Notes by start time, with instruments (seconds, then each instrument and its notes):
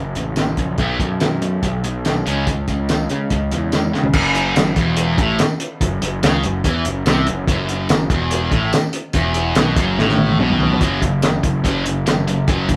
Already playing: picked electric bass F#1, distorted electric guitar F#2 C#3
0.15 picked electric bass A1, distorted electric guitar F#2 C#3, closed hi-hat
0.36 distorted electric guitar F#2 C#3, snare, closed hi-hat, tambourine
0.57 picked electric bass A#1, distorted electric guitar F#2 C#3, kick, closed hi-hat
0.78 picked electric bass B1, distorted electric guitar B2 F#3 B3, kick, closed hi-hat
0.99 picked electric bass F#2, distorted electric guitar B2 F#3, kick, closed hi-hat
1.20 distorted electric guitar B2 F#3, snare, closed hi-hat, tambourine
1.42 distorted electric guitar B2 F#3, closed hi-hat
1.62 picked electric bass B1, distorted electric guitar B2 F#3, kick, closed hi-hat
1.84 distorted electric guitar B2 F#3, closed hi-hat
2.05 distorted electric guitar B2 F#3, snare, closed hi-hat, tambourine
2.26 picked electric bass C#2, distorted electric guitar C#3 G#3 C#4, closed hi-hat
2.47 distorted electric guitar C#3 G#3, kick, closed hi-hat
2.68 picked electric bass C#2, distorted electric guitar C#3 G#3, kick, closed hi-hat
2.89 distorted electric guitar C#3 G#3, snare, closed hi-hat, tambourine
3.09 distorted electric guitar C#3 G#3, picked electric bass C#3, closed hi-hat
3.30 picked electric bass C#2, distorted electric guitar C#3 G#3, kick, closed hi-hat
3.51 picked electric bass E2, distorted electric guitar C#3 G#3, closed hi-hat
3.72 distorted electric guitar C#3 G#3, snare, closed hi-hat, tambourine
3.93 distorted electric guitar C#3 G#3, picked electric bass C#3, snare
4.04 floor tom
4.13 picked electric bass F#1, distorted electric guitar F#2, kick, crash
4.35 closed hi-hat
4.56 picked electric bass F#1, distorted electric guitar F#2, snare, closed hi-hat, tambourine
4.76 picked electric bass E1, distorted electric guitar E2, kick, closed hi-hat
4.97 closed hi-hat
5.18 picked electric bass A1, distorted electric guitar A2, kick, closed hi-hat
5.39 snare, closed hi-hat, tambourine
5.60 closed hi-hat
5.81 picked electric bass F#1, distorted electric guitar F#2, kick, closed hi-hat
6.02 picked electric bass F#1, distorted electric guitar F#2, closed hi-hat
6.23 picked electric bass C#2, distorted electric guitar C#3, snare, closed hi-hat, tambourine
6.43 picked electric bass F#1, distorted electric guitar F#2, closed hi-hat
6.64 picked electric bass E2, distorted electric guitar E3, kick, closed hi-hat
6.85 picked electric bass F#1, distorted electric guitar F#2, closed hi-hat
7.06 picked electric bass C2, distorted electric guitar C3, snare, closed hi-hat, tambourine
7.27 picked electric bass F#1, distorted electric guitar F#2, closed hi-hat
7.47 picked electric bass F#1, distorted electric guitar F#2, kick, closed hi-hat
7.69 closed hi-hat
7.89 picked electric bass F#1, distorted electric guitar F#2, snare, closed hi-hat, tambourine
8.10 picked electric bass E1, distorted electric guitar E2, kick, closed hi-hat
8.31 closed hi-hat
8.52 picked electric bass A1, distorted electric guitar A2, kick, closed hi-hat
8.73 snare, closed hi-hat, tambourine
8.93 closed hi-hat
9.13 picked electric bass E1, distorted electric guitar E2, kick, closed hi-hat
9.34 closed hi-hat
9.55 picked electric bass B1, distorted electric guitar B2, snare, closed hi-hat, tambourine
9.76 picked electric bass F#1, distorted electric guitar F#2, kick, closed hi-hat
9.98 picked electric bass A1, distorted electric guitar A2, snare
10.09 snare
10.18 high tom
10.29 high tom
10.39 picked electric bass B1, distorted electric guitar B2, mid tom
10.50 mid tom
10.60 floor tom
10.71 floor tom
10.81 picked electric bass F#1, distorted electric guitar F#2 C#3 F#3, kick, closed hi-hat
11.02 picked electric bass F#1, distorted electric guitar F#2 C#3, kick, closed hi-hat
11.22 distorted electric guitar F#2 C#3, snare, closed hi-hat, tambourine
11.43 picked electric bass F#1, distorted electric guitar F#2 C#3, kick, closed hi-hat
11.64 picked electric bass F#1, distorted electric guitar F#2 C#3 F#3, kick, closed hi-hat
11.85 distorted electric guitar F#2 C#3, closed hi-hat
12.06 distorted electric guitar F#2 C#3, snare, closed hi-hat, tambourine
12.27 distorted electric guitar F#2 C#3, closed hi-hat
12.48 picked electric bass F#1, distorted electric guitar F#2 C#3 F#3, kick, closed hi-hat
12.69 picked electric bass F#1, distorted electric guitar F#2 C#3, kick, closed hi-hat